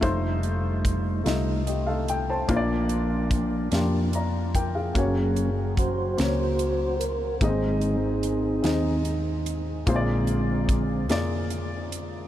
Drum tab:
HH |xxxxxx|xxxxxx|xxxxxx|xxxxxx|
SD |---o--|---o--|---o--|---o--|
BD |o-o---|o-o--o|o-o---|o-----|

HH |xxxxxx|
SD |---o--|
BD |o-o---|